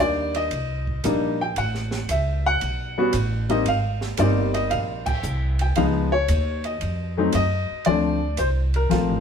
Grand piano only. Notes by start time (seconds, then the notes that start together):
Already playing: G3 A#3 D4 D#4
0.00 D5
0.36 D#5
1.04 G3 A#3 D4 D#4
1.41 G5
1.58 F#5
2.11 E5
2.46 F#5
2.98 G3 B3 C#4 F#4
3.49 G3 A#3 C4 D#4 D#5
3.68 F5
4.18 G3 A#3 C4 D#4 D5
4.54 D#5
4.70 F5
5.06 G5
5.61 G5
5.76 F3 G#3 B3 D#4 F5
6.12 C#5
6.65 D#5
7.17 F#3 A3 C4 D#4
7.35 D#5
7.86 F3 A3 C4 D4 D5
8.38 C5
8.76 A#4
8.89 F3 A3 C4 F4